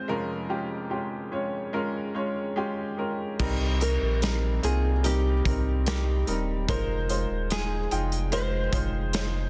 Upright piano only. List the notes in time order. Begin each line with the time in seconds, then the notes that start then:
Already playing: G#3 C4 F4 G#4 C5
0.08 F1 F2 G#3 C#4 F4 A#4
0.49 G#3 C#4 F4 G4
0.90 G#3 C#4 F4 G4
1.31 G#3 C#4 F4 C#5
1.73 G#3 C#4 F4 A#4
2.14 G#3 C#4 F4 C#5
2.56 G#3 C#4 F4 G4
2.97 G#3 C#4 F4 A#4
3.39 C3 G3 C4 D#4 A#4
3.80 G3 C4 D#4 A#4
4.22 G3 C4 D#4 A#4
4.63 A#3 C4 D#4 F4
5.03 G3 C4 D#4 A#4
5.45 G3 C4 D#4 A#4
5.86 G3 C4 D#4 A#4
6.27 G3 C4 D#4 A#4
6.68 G#3 D#4 F4 C5
7.09 G#3 D#4 F4 C5
7.50 G#3 D#4 F4 G#4
7.91 G#3 D#4 F4 G5
8.32 G#3 D#4 F4 C5
8.73 G#3 D#4 F4 C5
9.13 G#3 D#4 F4 C5